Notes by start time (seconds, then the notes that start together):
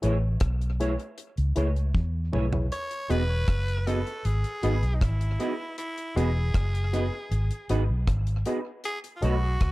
0.02 A1 A3 E4 G#4 B4 C#5, closed hi-hat
0.40 B1, kick, cross-stick, closed hi-hat
0.61 closed hi-hat
0.80 A3 E4 G#4 B4 C#5, closed hi-hat
0.99 muted clean electric guitar stroke, closed hi-hat
1.18 closed hi-hat
1.37 C#2, closed hi-hat
1.56 C#2 A3 E4 G#4 B4 C#5, closed hi-hat
1.76 closed hi-hat
1.95 E2, kick, high tom
2.32 B1 A3 E4 G#4 B4 C#5, mid tom
2.53 E4 G#4 B4 C#5, floor tom
2.72 C#5, closed hi-hat
2.91 closed hi-hat
3.09 E1 B3 D#4 F#4 G#4 B4 D#5, closed hi-hat
3.48 F#1, kick, cross-stick, closed hi-hat
3.68 closed hi-hat
3.87 B3 D#4 F#4 G#4 A4 B4 D#5, closed hi-hat
4.07 muted clean electric guitar stroke, closed hi-hat
4.25 G#1 G#4, closed hi-hat
4.44 closed hi-hat
4.63 G#1 B3 D#4 F#4 G#4 B4 D#5, closed hi-hat
4.83 B1, closed hi-hat
4.95 D#4
5.01 G#1 E4, kick, cross-stick, closed hi-hat
5.21 closed hi-hat
5.40 B3 D#4 F#4 G#4 B4 D#5, closed hi-hat
5.78 E4, closed hi-hat
5.98 closed hi-hat
6.16 E1 B3 D#4 F#4 G#4 B4 D#5, closed hi-hat
6.54 F#1, kick, cross-stick, closed hi-hat
6.75 closed hi-hat
6.93 B3 D#4 F#4 G#4 B4 D#5, closed hi-hat
7.13 muted clean electric guitar stroke
7.31 G#1, closed hi-hat
7.51 closed hi-hat
7.69 G#1 B3 D#4 F#4 G#4 B4 D#5, closed hi-hat
7.89 B1
8.08 G#1, kick, cross-stick, closed hi-hat
8.27 closed hi-hat
8.46 B3 D#4 F#4 G#4 B4 D#5, closed hi-hat
8.84 G#4, closed hi-hat
9.04 closed hi-hat
9.17 F4
9.22 B1 A3 D#4 F#4 A4 B4 C#5 D#5, closed hi-hat
9.61 C#2, kick, cross-stick, closed hi-hat